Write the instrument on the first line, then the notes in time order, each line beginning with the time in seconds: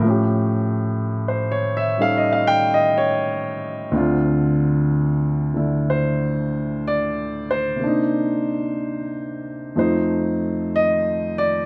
grand piano
0.00 A2 F3
0.04 A3 C#4
0.10 G4
1.28 C5
1.52 C#5
1.77 E5
1.98 G3 C#4 D#4 A4 F5
2.18 D#5
2.33 F5
2.47 G5
2.74 D#5
2.98 C#5
3.91 D2 D3 C4
3.97 F4
5.54 D3 A3 E4
5.90 C5
6.88 D5
7.51 C5
7.76 C3 A#3
7.84 D4 D#4
9.76 F2 F3 A3 D#4 C5
10.76 D#5
11.38 D5